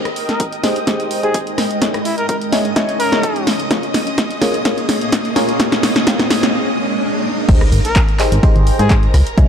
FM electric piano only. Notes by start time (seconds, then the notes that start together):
0.63 D#4 G4 G#4 C5
0.87 D#4 G4 G#4 C5
1.23 D#4 G4 G#4 C5
1.81 D#4 E4 G#4 C#5
2.52 D#4 E4 G#4 C#5
2.76 D#4 E4 G#4 C#5
3.12 D#4 E4 G#4 C#5
3.71 F4 G#4 A#4 C#5
4.42 F4 G#4 A#4 C#5
4.65 F4 G#4 A#4 C#5
5.36 F4 G#4 A#4 C#5
5.60 F4 G4 A#4 C#5
6.07 F4 G4 A#4 C#5
7.49 D#4 G4 G#4 C5
8.19 D#4 G4 G#4 C5
8.43 D#4 G4 G#4 C5
8.79 D#4 G4 G#4 C5
9.38 D#4 E4 G#4 C#5